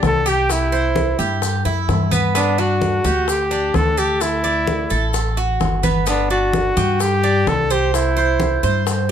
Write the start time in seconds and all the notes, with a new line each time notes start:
Already playing: D4
0.03 C2 A4, high bongo, low bongo, high conga, maracas
0.26 G4, maracas
0.50 E4, high bongo, high conga, maracas
0.72 C5, high bongo, high conga, maracas
0.96 high bongo, high conga, maracas
1.19 G2 G4, high conga, maracas
1.42 high bongo, high conga, maracas
1.65 F#2 E4, high bongo, high conga, maracas
1.88 G2, high bongo, low bongo, high conga, maracas
2.12 B3, high bongo, high conga, maracas
2.35 B3 D4, high bongo, high conga, maracas
2.58 D4 F#4, high conga, maracas
2.81 high bongo, high conga, maracas
3.04 D2 G4, high conga, maracas
3.28 G4, high bongo, high conga, maracas
3.51 D4, high conga, maracas
3.74 D2 A4, high bongo, low bongo, high conga, maracas
3.97 G4 A4, maracas
4.21 E4, high bongo, high conga, maracas
4.44 D5, high bongo, high conga, maracas
4.67 high bongo, high conga, maracas
4.90 A1 A4, high conga, maracas
5.14 high bongo, high conga, maracas
5.37 F#4, high bongo, high conga, maracas
5.60 G1, high bongo, low bongo, high conga, maracas
5.83 B3, high bongo, high conga, maracas
6.06 B3 D4, high bongo, high conga, maracas
6.30 D4 F#4, high conga, maracas
6.53 high bongo, high conga, maracas
6.77 G2 G4, high conga, maracas
7.00 G4, high bongo, high conga, maracas
7.24 D4, high conga, maracas
7.47 C2 A4, high bongo, low bongo, high conga, maracas
7.70 G4 C5, maracas
7.94 E4, high bongo, high conga, maracas
8.17 C5, high bongo, high conga, maracas
8.40 high bongo, high conga, maracas
8.63 G2 C5, high conga, maracas
8.86 high bongo, high conga, maracas